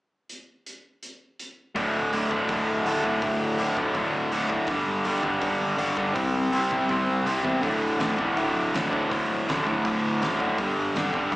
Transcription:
0.29 closed hi-hat
0.66 closed hi-hat
1.03 closed hi-hat
1.39 closed hi-hat
1.75 D1 D2 A2 D3, kick, open hi-hat
1.95 D1
2.13 D1 D2 A2 D3, open hi-hat
2.30 D1 D2 A2 D3, kick
2.49 D1 D2 A2 D3, kick, open hi-hat
2.66 D1
2.85 D1 D2 A2 D3, open hi-hat
3.04 D1 D2 A2 D3, kick
3.22 D1 D2 A2 D3, kick, open hi-hat
3.40 D1
3.58 D1 D2 A2 D3, open hi-hat
3.77 D1 D2 A2 D3, kick
3.94 D1 D2 A2 D3, kick, open hi-hat
4.13 D1
4.32 D1 D2 A2 D3, open hi-hat
4.49 F#1 D2 A2 D3, kick
4.67 G1 G2 D3 G3, kick, open hi-hat
4.88 G1
5.04 G1 G2 D3 G3, open hi-hat
5.23 G1 G2 D3 G3, kick
5.41 G1 G2 D3 G3, kick, open hi-hat
5.61 G1
5.78 G1 G2 D3 G3, open hi-hat
5.96 G1 G2 D3 G3, kick
6.14 C2 C3 G3 C4, kick, open hi-hat
6.33 C2
6.51 C2 C3 G3 C4, open hi-hat
6.71 C2 C3 G3 C4, kick
6.89 C2 C3 G3 C4, kick, open hi-hat
7.07 C2
7.25 C2 C3 G3 C4, open hi-hat
7.44 E2 C3 G3 C4, kick
7.61 D1 D2 A2 D3, kick, open hi-hat
7.81 D1
7.99 D1 D2 A2 D3, snare, open hi-hat
8.17 D1 D2 A2 D3, kick
8.37 D1 D2 A2 D3, kick, open hi-hat
8.55 D1
8.74 D1 D2 A2 D3, snare, open hi-hat
8.91 D1 D2 A2 D3, kick
9.10 D1 D2 A2 D3, kick, open hi-hat
9.28 D1
9.47 D1 D2 A2 D3, snare, open hi-hat
9.66 D1 D2 A2 D3, kick
9.85 D1 D2 A2 D3, kick, open hi-hat
10.03 D1
10.22 D1 D2 A2 D3, snare, open hi-hat
10.40 F#1 D2 A2 D3, kick
10.58 G1 G2 D3 G3, kick, open hi-hat
10.76 G1
10.94 G1 G2 D3 G3, snare, open hi-hat
11.13 G1 G2 D3 G3, kick
11.31 G1 G2 D3 G3, kick, open hi-hat

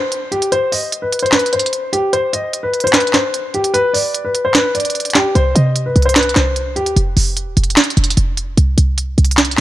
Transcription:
Already playing: C5
0.12 closed hi-hat
0.32 G4, closed hi-hat
0.42 closed hi-hat
0.52 C5, closed hi-hat
0.72 D#5, open hi-hat
0.92 closed hi-hat
1.02 B4
1.12 closed hi-hat
1.19 C5, closed hi-hat
1.26 closed hi-hat
1.32 B4, snare, clap, closed hi-hat
1.39 closed hi-hat
1.46 closed hi-hat
1.53 C5, closed hi-hat
1.59 closed hi-hat
1.66 closed hi-hat
1.73 closed hi-hat
1.93 G4, closed hi-hat
2.13 C5, closed hi-hat
2.33 D#5, closed hi-hat
2.53 closed hi-hat
2.63 B4
2.74 closed hi-hat
2.80 C5, closed hi-hat
2.87 closed hi-hat
2.93 B4, snare, clap, closed hi-hat
3.00 closed hi-hat
3.07 closed hi-hat
3.13 C5, snare, clap, closed hi-hat
3.34 closed hi-hat
3.54 G4, closed hi-hat
3.64 closed hi-hat
3.74 B4, closed hi-hat
3.94 D5, open hi-hat
4.14 closed hi-hat
4.25 B4
4.35 closed hi-hat
4.45 C5
4.54 B4, snare, clap, closed hi-hat
4.75 D5, closed hi-hat
4.80 closed hi-hat
4.85 closed hi-hat
4.90 closed hi-hat
4.95 closed hi-hat
5.00 closed hi-hat
5.05 closed hi-hat
5.10 closed hi-hat
5.14 G4, snare, clap, closed hi-hat
5.35 C2 C5, closed hi-hat
5.55 C3 D#5, closed hi-hat
5.76 closed hi-hat
5.86 B4
5.96 C2, closed hi-hat
6.02 C5, closed hi-hat
6.09 closed hi-hat
6.15 B4, snare, clap, closed hi-hat
6.23 closed hi-hat
6.29 closed hi-hat
6.35 C2 C5, snare, clap, closed hi-hat
6.56 closed hi-hat
6.76 D#2 G4, closed hi-hat
6.86 closed hi-hat
6.96 F1, closed hi-hat
7.17 F1, open hi-hat
7.37 closed hi-hat
7.47 D#1
7.57 F1, closed hi-hat
7.64 closed hi-hat
7.70 closed hi-hat
7.76 snare, clap, closed hi-hat
7.84 closed hi-hat
7.90 closed hi-hat
7.97 F1, closed hi-hat
8.04 closed hi-hat
8.10 closed hi-hat
8.17 F1, closed hi-hat
8.37 closed hi-hat
8.57 C2, closed hi-hat
8.78 C2, closed hi-hat
8.98 closed hi-hat
9.18 C2, closed hi-hat
9.25 closed hi-hat
9.31 closed hi-hat
9.37 snare, clap, closed hi-hat
9.45 closed hi-hat
9.51 closed hi-hat
9.57 clap

